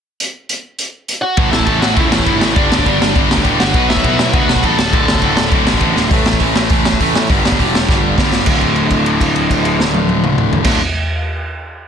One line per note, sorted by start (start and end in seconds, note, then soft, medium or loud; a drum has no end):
0.20 closed hi-hat medium
0.49 closed hi-hat medium
0.79 closed hi-hat medium
1.08 closed hi-hat medium
1.22 1.51 F#4 medium
1.22 1.50 F#5 loud
1.37 1.51 A1 loud
1.37 1.67 A2 medium
1.37 1.81 A2 medium
1.37 1.66 E3 loud
1.37 1.82 E3 loud
1.37 1.65 A3 loud
1.37 1.82 A3 loud
1.37 1.82 C#4 loud
1.37 1.81 E4 loud
1.37 1.81 A4 loud
1.37 kick loud
1.37 crash medium
1.51 1.66 A1 medium
1.51 1.65 E4 medium
1.51 1.67 E5 medium
1.51 snare loud
1.60 kick medium
1.65 1.80 A1 medium
1.65 1.95 A2 medium
1.65 1.95 E3 medium
1.65 1.96 A3 loud
1.65 1.81 A4 medium
1.65 1.80 A5 loud
1.65 kick loud
1.65 crash medium
1.80 1.96 A1 medium
1.80 2.55 E3 medium
1.80 2.55 A3 medium
1.80 2.56 C#4 medium
1.80 2.55 E4 medium
1.80 1.97 F#4 medium
1.80 2.55 A4 medium
1.80 1.94 F#5 medium
1.80 snare loud
1.85 2.54 A2 medium
1.94 2.10 C#2 medium
1.94 2.26 A2 loud
1.94 2.26 E3 loud
1.94 2.25 A3 loud
1.94 2.56 E5 loud
1.94 kick loud
1.94 crash medium
1.98 2.53 E4 medium
2.12 2.25 A1 medium
2.12 snare loud
2.19 kick medium
2.26 2.39 G1 loud
2.26 2.56 A2 medium
2.26 2.56 E3 medium
2.26 2.55 A3 loud
2.26 kick loud
2.26 crash medium
2.41 2.54 A1 medium
2.41 snare loud
2.55 2.69 G1 loud
2.55 2.99 G2 loud
2.55 2.86 G2 medium
2.55 2.99 D3 loud
2.55 2.85 D3 loud
2.55 3.00 G3 loud
2.55 2.85 G3 medium
2.55 3.00 B3 loud
2.55 3.01 D4 loud
2.55 3.13 D4 medium
2.55 3.00 G4 loud
2.55 3.11 D5 medium
2.55 kick loud
2.55 crash medium
2.72 2.85 G1 loud
2.72 snare loud
2.79 kick medium
2.86 2.99 G1 medium
2.86 3.14 G2 medium
2.86 3.15 D3 medium
2.86 3.16 G3 loud
2.86 kick loud
2.86 crash medium
3.01 3.14 G1 loud
3.01 3.74 G2 medium
3.01 3.74 D3 medium
3.01 3.75 G3 medium
3.01 3.74 B3 medium
3.01 3.75 D4 medium
3.01 3.74 G4 medium
3.01 snare loud
3.15 3.28 G1 loud
3.15 3.45 G2 medium
3.15 3.45 D3 loud
3.15 3.44 G3 loud
3.15 kick loud
3.15 crash medium
3.31 3.44 D2 medium
3.31 snare loud
3.37 kick medium
3.44 3.58 D1 medium
3.44 3.74 G2 medium
3.44 3.74 D3 medium
3.44 3.74 G3 medium
3.44 kick loud
3.44 crash medium
3.60 3.73 G1 medium
3.60 3.88 F#4 medium
3.60 3.88 F#5 loud
3.60 snare loud
3.74 3.87 B1 loud
3.74 4.18 B2 loud
3.74 4.04 B2 loud
3.74 4.18 F#3 loud
3.74 4.04 F#3 medium
3.74 4.18 B3 loud
3.74 4.02 B3 loud
3.74 4.18 D4 loud
3.74 4.17 F#4 loud
3.74 4.16 B4 loud
3.74 kick loud
3.74 crash medium
3.89 4.03 B1 loud
3.89 4.31 E4 medium
3.89 4.33 E5 medium
3.89 snare loud
3.96 kick loud
4.03 4.17 B1 medium
4.03 4.31 B2 medium
4.03 4.32 F#3 loud
4.03 4.33 B3 loud
4.03 kick loud
4.03 crash medium
4.18 4.32 B1 medium
4.18 4.77 B2 medium
4.18 4.77 F#3 medium
4.18 4.78 B3 medium
4.18 4.77 D4 medium
4.18 4.77 F#4 medium
4.18 4.77 B4 medium
4.18 snare loud
4.33 4.46 D2 medium
4.33 4.63 B2 loud
4.33 4.63 F#3 loud
4.33 4.63 B3 loud
4.33 4.61 F#4 medium
4.33 4.64 F#5 loud
4.33 kick loud
4.33 crash medium
4.49 4.62 B1 loud
4.49 snare loud
4.56 kick medium
4.63 4.76 A1 medium
4.63 4.78 B2 medium
4.63 4.78 F#3 medium
4.63 4.78 B3 loud
4.63 4.92 A4 medium
4.63 4.92 A5 medium
4.63 kick loud
4.63 crash medium
4.77 4.92 D1 medium
4.77 5.21 D2 medium
4.77 5.22 A2 medium
4.77 5.22 D3 loud
4.77 5.22 A3 loud
4.77 5.22 F#4 loud
4.77 snare loud
4.92 5.06 D1 medium
4.92 5.22 D2 medium
4.92 5.21 A2 medium
4.92 5.21 D3 loud
4.92 5.49 A4 medium
4.92 5.49 A5 medium
4.92 kick loud
4.92 crash medium
5.08 5.21 D1 medium
5.08 snare loud
5.15 kick medium
5.22 5.35 D1 loud
5.22 5.95 D2 medium
5.22 5.51 D2 medium
5.22 5.51 A2 medium
5.22 5.96 A2 medium
5.22 5.52 D3 medium
5.22 5.96 D3 medium
5.22 5.96 A3 medium
5.22 5.97 F#4 medium
5.22 kick medium
5.22 crash medium
5.37 5.51 D1 medium
5.37 snare loud
5.52 5.65 D1 loud
5.52 5.81 D2 medium
5.52 5.81 A2 loud
5.52 5.80 D3 loud
5.52 kick loud
5.52 crash medium
5.67 5.80 A1 medium
5.67 snare loud
5.74 kick medium
5.81 5.94 A1 medium
5.81 6.11 D2 medium
5.81 6.10 A2 medium
5.81 6.10 D3 loud
5.81 kick loud
5.81 crash medium
5.96 6.09 D1 medium
5.96 snare medium
6.11 6.24 A1 medium
6.11 6.42 A2 medium
6.11 6.41 E3 loud
6.11 6.41 A3 loud
6.11 kick loud
6.11 open hi-hat medium
6.26 6.39 A1 medium
6.26 snare loud
6.33 kick medium
6.40 6.53 A1 loud
6.40 6.70 A2 medium
6.40 6.71 E3 loud
6.40 6.71 A3 loud
6.40 kick loud
6.40 open hi-hat medium
6.55 6.68 A1 loud
6.55 snare loud
6.70 6.95 A1 loud
6.70 7.00 A2 medium
6.70 7.00 E3 loud
6.70 6.99 A3 loud
6.70 kick loud
6.70 open hi-hat medium
6.85 snare loud
6.93 kick medium
7.00 7.13 A1 medium
7.00 7.29 A2 medium
7.00 7.29 E3 loud
7.00 7.29 A3 loud
7.00 kick medium
7.00 open hi-hat medium
7.16 7.28 A2 medium
7.16 snare loud
7.30 7.42 G1 medium
7.30 7.59 G2 loud
7.30 7.58 D3 loud
7.30 7.58 G3 loud
7.30 kick loud
7.30 open hi-hat medium
7.45 7.57 G1 medium
7.45 snare loud
7.52 kick medium
7.59 7.84 E1 loud
7.59 7.88 G2 medium
7.59 7.89 D3 medium
7.59 7.89 G3 medium
7.59 kick medium
7.59 open hi-hat medium
7.75 snare loud
7.89 8.13 G1 medium
7.89 8.19 G2 medium
7.89 8.18 D3 medium
7.89 8.18 G3 medium
7.89 kick loud
7.89 snare medium
8.18 8.30 G1 medium
8.18 8.46 G2 medium
8.18 8.47 D3 loud
8.18 8.47 G3 loud
8.18 kick loud
8.18 snare medium
8.32 8.45 G1 medium
8.32 snare medium
8.46 10.57 D1 medium
8.46 10.64 D2 medium
8.46 10.66 A2 medium
8.46 kick loud
8.46 crash medium
8.51 10.68 D3 loud
8.61 kick medium
8.61 crash soft
8.76 crash soft
8.90 kick medium
8.90 crash soft
9.06 crash soft
9.21 kick medium
9.21 crash medium
9.36 crash soft
9.50 kick medium
9.50 crash medium
9.65 crash medium
9.80 snare medium
9.94 high tom medium
10.09 high tom medium
10.24 mid tom medium
10.38 mid tom loud
10.53 floor tom loud
10.64 10.78 D1 loud
10.64 10.78 D2 medium
10.64 10.79 A2 loud
10.64 kick loud
10.64 snare medium
10.64 crash medium
10.69 10.80 D3 loud